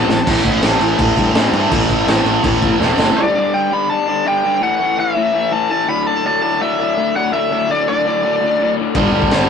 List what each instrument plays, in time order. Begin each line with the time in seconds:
0.08 picked electric bass A1, overdriven electric guitar A2 E3, lead electric guitar A5, snare
0.26 picked electric bass A1, overdriven electric guitar A2 E3 A3, kick, crash
0.45 picked electric bass A1, kick, crash
0.62 picked electric bass A1, overdriven electric guitar A2 E3 A3, snare, crash
0.80 picked electric bass A1, overdriven electric guitar A2 E3 A3, crash
0.98 picked electric bass A1, overdriven electric guitar A2 E3 A3, kick, crash
1.17 picked electric bass G2, kick, crash
1.34 picked electric bass A1, overdriven electric guitar A2 E3 A3, snare, crash
1.52 picked electric bass G2, overdriven electric guitar A2 E3 A3, crash
1.70 picked electric bass A1, overdriven electric guitar A2 E3 A3, kick, crash
1.89 picked electric bass A1, kick, crash
2.07 picked electric bass A1, overdriven electric guitar A2 E3 A3, snare, crash
2.25 picked electric bass A1, overdriven electric guitar A2 E3 A3, crash
2.43 picked electric bass A1, overdriven electric guitar A2 E3 A3, kick, crash
2.62 picked electric bass A1, kick, crash
2.79 picked electric bass E1, overdriven electric guitar A2 E3 A3, snare
2.98 picked electric bass F#1, overdriven electric guitar A2 E3 A3, snare
3.16 overdriven electric guitar G2 D3 G3, lead electric guitar D5
3.35 overdriven electric guitar G2 D3 G3
3.53 overdriven electric guitar G2 D3 G3, lead electric guitar G5
3.71 overdriven electric guitar G2 D3 G3, lead electric guitar B5
3.89 overdriven electric guitar G2 D3 G3, lead electric guitar A5
4.06 overdriven electric guitar G2 D3 G3
4.25 overdriven electric guitar G2 D3 G3, lead electric guitar G5
4.43 overdriven electric guitar G2 D3 G3
4.60 overdriven electric guitar A2 E3 A3, lead electric guitar F#5
4.79 overdriven electric guitar A2 E3 A3
4.97 overdriven electric guitar A2 E3 A3, lead electric guitar E5
5.16 overdriven electric guitar A2 E3 A3
5.33 overdriven electric guitar A2 E3 A3
5.51 overdriven electric guitar A2 E3 A3, lead electric guitar A5
5.69 overdriven electric guitar A2 E3 A3, lead electric guitar A5
5.87 overdriven electric guitar D2 A2 D3, lead electric guitar B5
6.06 overdriven electric guitar D2 A2 D3, lead electric guitar A5
6.24 overdriven electric guitar D2 A2 D3, lead electric guitar A5
6.42 overdriven electric guitar D2 A2 D3, lead electric guitar A5
6.60 overdriven electric guitar D2 A2 D3, lead electric guitar E5
6.78 overdriven electric guitar D2 A2 D3
6.97 overdriven electric guitar D2 A2 D3
7.15 overdriven electric guitar D2 A2 D3, lead electric guitar F#5
7.32 overdriven electric guitar D2 A2 D3, lead electric guitar E5
7.50 overdriven electric guitar D2 A2 D3
7.69 overdriven electric guitar D2 A2 D3, lead electric guitar D5
7.87 overdriven electric guitar D2 A2 D3, lead electric guitar D5
8.05 overdriven electric guitar D2 A2 D3
8.23 overdriven electric guitar D2 A2 D3
8.40 overdriven electric guitar D2 A2 D3
8.59 overdriven electric guitar D2 A2 D3
8.78 overdriven electric guitar D2 A2 D3
8.95 picked electric bass G1, overdriven electric guitar G2 D3 G3, kick, crash
9.12 picked electric bass G1, overdriven electric guitar G2 D3 G3
9.22 kick
9.30 picked electric bass G1, overdriven electric guitar G2 D3 G3, snare, crash